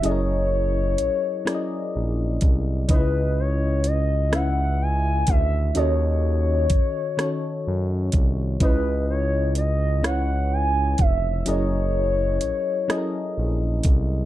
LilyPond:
<<
  \new Staff \with { instrumentName = "Soft synth lead" } { \time 6/8 \key cis \minor \tempo 4. = 42 cis''2~ cis''8 r8 | b'8 cis''8 dis''8 fis''8 gis''8 e''8 | cis''2~ cis''8 r8 | b'8 cis''8 dis''8 fis''8 gis''8 e''8 |
cis''2~ cis''8 r8 | }
  \new Staff \with { instrumentName = "FM electric piano" } { \time 6/8 \key cis \minor <fis cis' e' gis' a' ais' dis''>4 r8 <fis cis' e' gis' ais' d'' dis''>4 r8 | <cis cis' dis' e' b' dis''>4 r8 <cis cis' e' b' e''>4 r8 | <dis cis' fis' a' dis''>4 r8 <dis cis' fis' a' cis''>4 r8 | <cis cis' e' b' dis''>4 r8 <cis cis' e' b' cis''>4 r8 |
<fis cis' e' gis' ais' dis''>4 r8 <fis cis' e' gis' a' ais' dis''>4 r8 | }
  \new Staff \with { instrumentName = "Analog synth bass" } { \clef bass \time 6/8 \key cis \minor fis,,4 ais,,8 r8 ais,,8 bis,,8 | cis,2~ cis,8 d,8 | dis,4 fis,8 r8 fis,8 bis,,8 | cis,2~ cis,8 eis,,8 |
fis,,4 ais,,8 r8 ais,,8 bis,,8 | }
  \new DrumStaff \with { instrumentName = "Drums" } \drummode { \time 6/8 hh4 hh8 <hh ss>4 <hh bd>8 | <hh bd>4 hh8 <hh ss>4 <hh bd>8 | hh4 <hh bd>8 <hh ss>4 <hh bd>8 | <hh bd>4 hh8 <hh ss>4 <hh bd>8 |
hh4 hh8 <hh ss>4 <hh bd>8 | }
>>